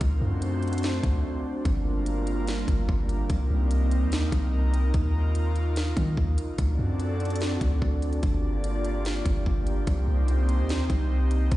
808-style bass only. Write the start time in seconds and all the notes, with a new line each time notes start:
0.01 D2
0.21 F#2
1.03 D2
1.65 G1
2.68 G1
2.89 G1
3.30 C2
3.50 C2
4.02 D#2
4.32 C2
4.94 D#2
5.97 D#3
6.17 D#2
6.58 D2
6.79 F#2
7.61 D2
7.82 D2
8.23 G1
9.26 G1
9.46 G1
9.87 C2
10.08 C2
10.59 D#2
10.90 C2
11.52 D#2